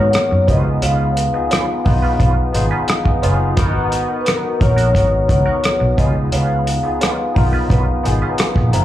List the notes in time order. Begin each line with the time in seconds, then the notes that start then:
Already playing: G#2 A#3 B3 D#4 F#4 G#4 A#4 C#5
0.13 cross-stick, closed hi-hat
0.31 F#2, muted clean electric guitar stroke
0.48 C#2 B3 C#4 D#4 F4 G4 B4 D#5, kick, closed hi-hat
0.57 G#4
0.65 muted clean electric guitar stroke
0.82 C#2 C#4 F4 B4 F5, closed hi-hat
1.17 closed hi-hat
1.33 B3 D#4 F4 G#4, muted clean electric guitar stroke
1.51 C#4 F4 B4, cross-stick, closed hi-hat
1.85 B1 B3 D#4 F4 B4, muted clean electric guitar stroke, kick, open hi-hat
2.02 C#4 F4 B4
2.19 B1 C#4 F4 B4, kick, closed hi-hat
2.53 G#1 B3 D#4 F4 G#4, muted clean electric guitar stroke, closed hi-hat
2.71 C#4 F4 B4
2.88 muted clean electric guitar stroke, cross-stick, closed hi-hat
3.05 muted clean electric guitar stroke, kick
3.22 F#1 B3 C#4 D#4 F4 G#4 B4, closed hi-hat
3.56 G#1 B3 D#4 F#4 A#4, kick, closed hi-hat
3.92 closed hi-hat
4.09 muted clean electric guitar stroke
4.21 B4
4.25 B3 F#4 A#4, cross-stick, closed hi-hat
4.59 A#1 B3 D#4 F#4 A#4 C#5, muted clean electric guitar stroke, kick, closed hi-hat
4.76 B3 F#4 A#4, closed hi-hat
4.93 G#1 B3 F#4 A#4, kick, closed hi-hat
5.28 C#2 B3 D#4 F#4 A#4, muted clean electric guitar stroke, kick, closed hi-hat
5.46 B3 F#4 A#4
5.63 muted clean electric guitar stroke, cross-stick, closed hi-hat
5.80 B1, muted clean electric guitar stroke
5.98 C#2 B3 C#4 D#4 F4 G#4 B4 D#5, kick, closed hi-hat
6.15 muted clean electric guitar stroke
6.32 C#2 C#4 F4 B4 F5, closed hi-hat
6.67 closed hi-hat
6.83 B3 D#4 F4 G#4, muted clean electric guitar stroke
7.01 C#4 F4 B4, cross-stick, closed hi-hat
7.34 B1 B3 D#4 F4 A#4, muted clean electric guitar stroke, kick, open hi-hat
7.53 C#4 F4 B4
7.70 B1 C#4 F4 B4, kick, closed hi-hat
8.03 G#1 B3 D#4 F4 G#4, muted clean electric guitar stroke, closed hi-hat
8.22 C#4 F4 B4
8.38 muted clean electric guitar stroke, cross-stick, closed hi-hat
8.56 A#1, muted clean electric guitar stroke, kick
8.72 F#1 B3 C#4 D#4 F4 B4 A#5, closed hi-hat